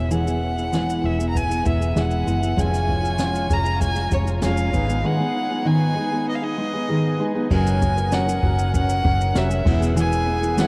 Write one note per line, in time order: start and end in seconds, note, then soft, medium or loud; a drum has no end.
0.00 1.00 E1 medium
0.00 0.11 G#4 soft
0.00 0.12 E5 medium
0.10 0.26 E3 medium
0.10 0.26 G#3 medium
0.10 0.26 B3 medium
0.10 0.26 E4 medium
0.10 0.24 G#4 medium
0.10 1.07 F#5 medium
0.10 shaker medium
0.26 0.57 B3 soft
0.26 0.56 E4 soft
0.26 0.55 G#4 medium
0.26 shaker soft
0.41 1.64 E4 medium
0.57 0.72 B3 soft
0.57 0.72 E4 soft
0.57 0.73 G#4 soft
0.57 shaker soft
0.72 1.03 E3 medium
0.72 1.02 G#3 medium
0.72 1.03 B3 medium
0.72 1.03 E4 medium
0.72 1.04 G#4 medium
0.72 snare medium
0.72 shaker medium
0.90 shaker medium
1.03 1.62 E1 medium
1.03 1.19 G#3 medium
1.03 1.19 B3 medium
1.03 1.18 E4 medium
1.03 1.17 G#4 medium
1.03 1.29 E5 medium
1.18 1.50 B3 soft
1.18 1.49 E4 soft
1.18 1.48 G#4 medium
1.18 shaker medium
1.29 1.39 A#5 medium
1.34 2.25 B3 medium
1.34 1.67 G#5 loud
1.34 kick medium
1.34 shaker medium
1.49 1.64 B3 soft
1.49 1.65 E4 soft
1.49 1.65 G#4 medium
1.49 shaker soft
1.64 1.94 E1 medium
1.64 1.80 G#3 medium
1.64 1.81 B3 medium
1.64 1.80 E4 medium
1.64 1.79 G#4 medium
1.64 2.01 E5 medium
1.64 kick medium
1.64 shaker medium
1.80 1.94 B3 soft
1.80 1.95 E4 soft
1.80 1.95 G#4 medium
1.80 shaker soft
1.95 2.25 E1 medium
1.95 2.26 E3 medium
1.95 2.25 G#3 medium
1.95 2.26 B3 medium
1.95 2.26 E4 medium
1.95 2.27 G#4 medium
1.95 snare medium
1.95 shaker medium
1.99 2.62 F#5 medium
2.11 shaker soft
2.26 2.56 F#1 medium
2.26 2.42 G#3 medium
2.26 2.42 B3 medium
2.26 2.41 E4 medium
2.26 2.40 G#4 medium
2.26 shaker soft
2.41 2.57 B3 soft
2.41 2.57 E4 soft
2.41 2.57 G#4 soft
2.41 shaker soft
2.56 3.47 F1 loud
2.56 2.73 F3 medium
2.56 2.73 G#3 medium
2.56 2.73 C#4 medium
2.56 2.72 F4 medium
2.56 4.72 F4 medium
2.56 2.71 G#4 medium
2.56 4.72 C#5 medium
2.56 4.71 G#5 medium
2.56 kick medium
2.56 shaker medium
2.61 3.55 G#5 loud
2.72 3.03 C#4 soft
2.72 3.02 F4 medium
2.72 3.01 G#4 medium
2.72 shaker soft
2.88 4.11 C#4 medium
2.88 kick medium
3.02 3.17 C#4 soft
3.02 3.18 F4 medium
3.02 3.18 G#4 soft
3.02 shaker soft
3.18 3.50 F3 medium
3.18 3.47 G#3 medium
3.18 3.48 C#4 medium
3.18 3.49 F4 medium
3.18 3.49 G#4 medium
3.18 snare loud
3.18 shaker medium
3.35 shaker medium
3.49 4.08 F1 medium
3.49 3.65 G#3 medium
3.49 3.64 C#4 medium
3.49 3.63 F4 medium
3.49 3.63 G#4 medium
3.49 kick medium
3.49 shaker medium
3.53 3.82 A#5 loud
3.64 3.96 C#4 soft
3.64 3.95 F4 medium
3.64 3.94 G#4 medium
3.64 shaker soft
3.81 4.73 G#3 medium
3.81 4.11 G#5 loud
3.81 kick medium
3.81 shaker medium
3.95 4.09 C#4 soft
3.95 4.10 F4 soft
3.95 4.11 G#4 soft
3.95 snare soft
3.95 shaker soft
4.10 4.41 F1 medium
4.10 4.27 G#3 medium
4.10 4.26 C#4 medium
4.10 4.25 F4 medium
4.10 4.24 G#4 medium
4.10 4.27 C#5 medium
4.10 kick medium
4.10 shaker medium
4.25 4.42 C#4 soft
4.25 4.42 F4 medium
4.25 4.42 G#4 soft
4.25 shaker soft
4.42 4.71 F1 medium
4.42 4.73 F3 medium
4.42 4.71 G#3 medium
4.42 4.73 C#4 medium
4.42 4.74 F4 medium
4.42 4.73 G#4 medium
4.42 5.08 F5 medium
4.42 snare loud
4.42 shaker medium
4.57 shaker soft
4.72 5.02 G#1 medium
4.72 4.88 G#3 medium
4.72 4.88 B3 medium
4.72 7.48 D#4 medium
4.72 4.87 D#4 medium
4.72 4.86 G#4 medium
4.72 7.48 B4 medium
4.72 7.47 G#5 medium
4.72 kick loud
4.72 shaker soft
4.88 5.02 G#3 soft
4.88 5.03 B3 soft
4.88 5.03 D#4 soft
4.88 5.03 G#4 medium
4.88 shaker soft
5.04 5.20 G#2 medium
5.04 5.20 D#3 medium
5.04 5.19 G#3 medium
5.04 5.18 B3 medium
5.04 5.18 D#4 medium
5.04 5.17 G#4 medium
5.04 5.69 F#5 loud
5.19 5.50 G#3 soft
5.19 5.49 B3 soft
5.19 5.49 D#4 soft
5.19 5.48 G#4 medium
5.35 6.57 D#4 medium
5.49 5.64 G#3 soft
5.49 5.64 B3 soft
5.49 5.64 D#4 soft
5.49 5.65 G#4 soft
5.65 5.96 G#2 medium
5.65 5.96 D#3 medium
5.65 5.94 G#3 medium
5.65 5.95 B3 medium
5.65 5.96 D#4 medium
5.65 5.97 G#4 medium
5.65 6.28 G#5 loud
5.95 6.12 G#3 medium
5.95 6.11 B3 medium
5.95 6.11 D#4 medium
5.95 6.10 G#4 medium
6.11 6.43 G#3 soft
6.11 6.43 B3 medium
6.11 6.42 D#4 soft
6.11 6.41 G#4 medium
6.27 7.18 B3 medium
6.27 6.37 D#5 medium
6.35 6.45 F5 medium
6.42 6.56 G#3 soft
6.42 6.57 B3 soft
6.42 6.58 D#4 soft
6.42 6.58 G#4 soft
6.42 7.21 D#5 medium
6.57 6.73 G#3 medium
6.57 6.74 B3 medium
6.57 6.73 D#4 medium
6.57 6.72 G#4 medium
6.73 6.88 G#3 soft
6.73 6.88 B3 soft
6.73 6.89 D#4 medium
6.73 6.89 G#4 medium
6.89 7.20 G#2 medium
6.89 7.20 D#3 medium
6.89 7.18 G#3 medium
6.89 7.18 B3 medium
6.89 7.19 D#4 medium
6.89 7.20 G#4 medium
7.19 7.35 G#3 medium
7.19 7.34 B3 medium
7.19 7.34 D#4 medium
7.19 7.33 G#4 medium
7.34 7.50 G#3 soft
7.34 7.50 B3 medium
7.34 7.51 D#4 medium
7.34 7.50 G#4 medium
7.50 8.39 F#1 loud
7.50 7.97 F#3 medium
7.50 7.97 C#4 medium
7.50 9.64 C#4 medium
7.50 7.97 F#4 medium
7.50 9.63 A#4 medium
7.50 7.95 A#4 medium
7.50 9.64 F#5 medium
7.50 8.15 G#5 medium
7.50 kick loud
7.50 crash loud
7.67 shaker soft
7.81 9.71 A#3 medium
7.81 kick medium
7.81 shaker soft
7.96 8.11 C#4 soft
7.96 8.12 F#4 soft
7.96 8.12 A#4 medium
7.96 shaker soft
8.12 8.27 F#3 medium
8.12 8.28 C#4 medium
8.12 8.27 F#4 medium
8.12 8.26 A#4 medium
8.12 8.74 F#5 medium
8.12 snare loud
8.12 shaker medium
8.28 8.42 C#4 soft
8.28 8.43 F#4 soft
8.28 8.43 A#4 medium
8.28 shaker medium
8.42 9.00 F#1 loud
8.42 9.03 F#3 medium
8.42 9.03 C#4 medium
8.42 9.04 F#4 medium
8.42 9.04 A#4 medium
8.42 kick loud
8.59 shaker medium
8.73 9.33 C#4 medium
8.73 9.40 F#5 loud
8.73 kick medium
8.73 shaker medium
8.89 shaker medium
9.04 9.33 F#1 loud
9.04 9.34 F#3 medium
9.04 9.34 C#4 medium
9.04 9.34 F#4 medium
9.04 9.35 A#4 medium
9.04 kick loud
9.21 shaker soft
9.35 9.64 F1 medium
9.35 9.50 F#3 medium
9.35 9.50 C#4 medium
9.35 9.50 F#4 medium
9.35 9.49 A#4 medium
9.35 9.82 E5 medium
9.35 snare loud
9.35 shaker medium
9.50 9.65 C#4 soft
9.50 9.66 F#4 medium
9.50 9.65 A#4 medium
9.50 shaker soft
9.64 10.67 E1 medium
9.64 9.95 E3 medium
9.64 9.80 G#3 medium
9.64 10.67 B3 medium
9.64 9.81 B3 medium
9.64 9.80 E4 medium
9.64 10.67 G#4 medium
9.64 9.79 G#4 medium
9.64 10.67 E5 loud
9.64 kick loud
9.64 crash medium
9.80 9.95 B3 soft
9.80 9.95 E4 medium
9.80 9.96 G#4 medium
9.80 shaker soft
9.95 10.41 E3 medium
9.95 10.42 G#3 medium
9.95 10.42 B3 medium
9.95 10.41 E4 medium
9.95 10.40 G#4 medium
9.95 shaker medium
10.00 10.62 G#5 loud
10.12 shaker medium
10.27 10.67 B3 medium
10.42 10.57 B3 soft
10.42 10.57 E4 soft
10.42 10.57 G#4 medium
10.42 shaker soft
10.57 10.67 E3 medium
10.57 10.67 G#3 medium
10.57 10.67 B3 medium
10.57 10.67 E4 medium
10.57 10.67 G#4 medium
10.57 10.67 F#5 medium
10.57 snare medium
10.57 shaker medium